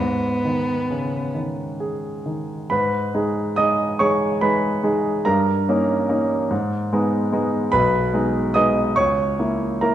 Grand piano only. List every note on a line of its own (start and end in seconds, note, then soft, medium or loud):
0.00 2.67 G#2 soft
0.45 1.17 D#3 soft
0.90 1.35 C#3 soft
1.35 2.07 D#3 soft
1.80 2.53 G#4 soft
2.26 2.71 D#3 soft
2.70 3.13 G#2 soft
2.70 3.54 B4 soft
2.70 3.57 B5 medium
3.14 3.53 G#3 soft
3.14 3.54 D#4 soft
3.14 3.54 G#4 soft
3.56 3.96 G#3 soft
3.56 3.96 D#4 soft
3.56 3.96 G#4 soft
3.56 3.97 D#5 soft
3.56 3.99 D#6 medium
3.99 4.38 G#3 soft
3.99 4.38 D#4 soft
3.99 4.38 G#4 soft
3.99 4.39 C#5 soft
3.99 4.42 C#6 medium
4.41 4.80 G#3 soft
4.41 4.80 D#4 soft
4.41 4.80 G#4 soft
4.41 5.22 B4 soft
4.41 5.26 B5 medium
4.83 5.22 G#3 soft
4.83 5.22 D#4 soft
4.83 5.22 G#4 soft
5.25 5.67 G2 soft
5.25 7.28 A#4 medium
5.25 7.31 A#5 medium
5.69 6.06 A#3 soft
5.69 6.06 C#4 soft
5.69 6.06 D#4 soft
6.09 6.46 A#3 soft
6.09 6.46 C#4 soft
6.09 6.46 D#4 soft
6.51 6.90 G#2 soft
6.93 7.29 G#3 soft
6.93 7.29 B3 soft
6.93 7.29 D#4 soft
7.32 7.69 G#3 soft
7.32 7.69 B3 soft
7.32 7.69 D#4 soft
7.72 8.12 B1 soft
7.72 8.50 B4 medium
7.72 8.53 B5 medium
8.14 8.50 G#3 soft
8.14 8.50 B3 soft
8.14 8.51 D#4 soft
8.54 8.92 G#3 soft
8.54 8.92 B3 soft
8.54 8.92 D#4 soft
8.54 8.93 D#5 medium
8.54 8.95 D#6 medium
8.96 9.37 C#2 soft
8.96 9.78 C#5 soft
8.96 9.81 C#6 medium
9.39 9.78 A#3 soft
9.39 9.78 E4 soft
9.81 9.95 A#3 soft
9.81 9.95 E4 soft
9.81 9.95 A#4 soft
9.81 9.95 A#5 medium